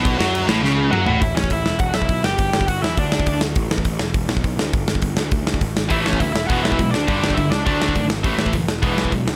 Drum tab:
CC |x---x-----------|----------------|----------------|----------------|
HH |----------------|o---o---o---o---|o---o---o---o---|o---o---o---o---|
SD |--o---o-o-------|--o---o---o---o-|--o---o---o---o-|--o---o---o---o-|
T2 |------------o---|----------------|----------------|----------------|
FT |--------------o-|----------------|----------------|----------------|
BD |o---------------|o--oo---o--oo---|o--oo---o--oo---|o--oo---o--oo---|

CC |----------------|----------------|----------------|----------------|
HH |o---o---o---o---|o---o---o---o---|o---o---o---o---|o---o---o---o---|
SD |--o---o---o---o-|--o---o---o---o-|--o---o---o---o-|--o---o---o---o-|
T2 |----------------|----------------|----------------|----------------|
FT |----------------|----------------|----------------|----------------|
BD |o--oo---o--oo---|o--oo---o--oo---|o--oo---o--oo---|o--oo---o--oo---|